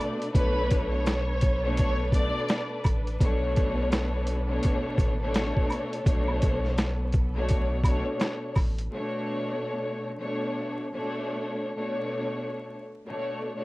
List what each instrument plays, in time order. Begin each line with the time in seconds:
Already playing: string section B2 A3 B3 D4 A4 B4 D5
0.01 closed hi-hat
0.22 closed hi-hat
0.32 sub bass B1, string section B2 A3 B3 D4 A4 C#5, violin section B4, kick, closed hi-hat, maracas
0.71 kick, closed hi-hat, maracas
0.92 violin section C#5
1.06 snare, closed hi-hat, maracas
1.41 kick, closed hi-hat, maracas
1.64 string section B2 A3 D4 C#5
1.77 violin section C#5, kick, closed hi-hat, maracas
2.12 string section B2 A3 D4 D5, violin section D5, kick, closed hi-hat, maracas
2.49 snare, closed hi-hat, maracas
2.84 sub bass A1, kick, closed hi-hat, high woodblock, maracas
3.07 closed hi-hat
3.21 sub bass B1, string section B2 A3 B3 D4 A4 C#5, kick, closed hi-hat, maracas
3.56 kick, closed hi-hat, maracas
3.92 snare, closed hi-hat, maracas
4.27 closed hi-hat, maracas
4.47 string section B2 A3 D4 C#5
4.63 kick, closed hi-hat, maracas
4.85 sub bass A1
4.98 sub bass A1, kick, closed hi-hat, maracas
5.21 string section B2 A3 D4 C#5
5.34 snare, closed hi-hat, maracas
5.56 kick
5.70 closed hi-hat, high woodblock, maracas
5.93 closed hi-hat
6.04 sub bass B1, string section B2 A3 B3 D4 C#5, kick, closed hi-hat, maracas
6.28 high woodblock
6.42 kick, closed hi-hat, maracas
6.65 snare
6.78 snare, closed hi-hat, maracas
7.12 kick, closed hi-hat, maracas
7.35 string section B2 A3 D4 C#5
7.48 kick, closed hi-hat, maracas
7.84 string section B2 A3 D4 C#5, kick, closed hi-hat, high woodblock, maracas
8.20 snare, closed hi-hat, maracas
8.56 sub bass A1, kick, open hi-hat, high woodblock, maracas
8.79 closed hi-hat
8.92 string section B2 A3 D4 C#5
10.19 string section B2 A3 D4 C#5
10.93 string section B2 A3 D4 C#5
11.75 string section B2 A3 D4 C#5
13.06 string section B2 A3 D4 C#5
13.55 string section B2 A3 D4 C#5